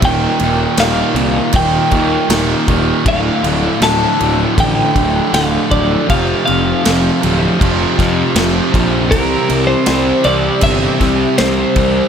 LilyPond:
<<
  \new Staff \with { instrumentName = "Clean electric guitar" } { \time 4/4 \key d \minor \tempo 4 = 79 g''4 f''4 g''4 r4 | f''4 a''4 g''4 f''8 d''8 | f''8 f''2 r4. | bes'8. c''8. d''8 e''4 c''4 | }
  \new Staff \with { instrumentName = "String machine" } { \time 4/4 \key d \minor << { <ees' bes'>1 | <d' a'>1 | <c' a'>1 | <c' g'>1 | } \\ { g1 | f1~ | f1 | e1 | } >> }
  \new Staff \with { instrumentName = "Distorted electric guitar" } { \clef bass \time 4/4 \key d \minor <ees, bes, ees>8 <ees, bes, ees>8 <ees, bes, ees>8 <ees, bes, ees>8 <ees, bes, ees>8 <ees, bes, ees>8 <ees, bes, ees>8 <ees, bes, ees>8 | <d, a, d>8 <d, a, d>8 <d, a, d>8 <d, a, d>8 <d, a, d>8 <d, a, d>8 <d, a, d>8 <d, a, d>8 | <f, c f>8 <f, c f>8 <f, c f>8 <f, c f>8 <f, c f>8 <f, c f>8 <f, c f>8 <f, c f>8 | <c g c'>8 <c g c'>8 <c g c'>8 <c g c'>8 <c g c'>8 <c g c'>8 <c g c'>8 <c g c'>8 | }
  \new Staff \with { instrumentName = "Distorted electric guitar" } { \clef bass \time 4/4 \key d \minor <ees, bes, ees>8 <ees, bes, ees>8 <ees, bes, ees>8 <ees, bes, ees>8 <ees, bes, ees>8 <ees, bes, ees>8 <ees, bes, ees>8 <ees, bes, ees>8 | <d, a, d>8 <d, a, d>8 <d, a, d>8 <d, a, d>8 <d, a, d>8 <d, a, d>8 <d, a, d>8 <d, a, d>8 | <f, c f>8 <f, c f>8 <f, c f>8 <f, c f>8 <f, c f>8 <f, c f>8 <f, c f>8 <f, c f>8 | <c g c'>8 <c g c'>8 <c g c'>8 <c g c'>8 <c g c'>8 <c g c'>8 <c g c'>8 <c g c'>8 | }
  \new Staff \with { instrumentName = "Picked electric bass" } { \clef bass \time 4/4 \key d \minor ees,,8 ees,,8 ees,,8 c,8 ees,,8 ees,8 ees,,8 ees,,8 | d,,8 d,,8 d,,8 d,,8 a,,8 d,,8 d,,8 d,,8 | f,,8 f,,8 f,,8 d,,8 f,,8 f,8 f,,8 bes,,8 | c,8 c,8 c,8 c,8 g,,8 c,8 c,8 c,8 | }
  \new DrumStaff \with { instrumentName = "Drums" } \drummode { \time 4/4 <cymc bd>8 cymc8 <cymc sn>8 cymc8 <cymc bd>8 <cymc bd>8 <cymc sn>8 <cymc bd>8 | <cymc bd>8 cymc8 <cymc sn>8 cymc8 <cymc bd>8 <cymc bd>8 <cymc sn>8 <cymc bd>8 | <cymc bd>8 cymc8 <cymc sn>8 cymc8 <cymc bd>8 <cymc bd sn>8 <cymc sn>8 <cymc bd>8 | <cymc bd>8 cymc8 <cymc sn>8 cymc8 <cymc bd>8 <cymc bd sn>8 <cymc sn>8 <cymc bd>8 | }
>>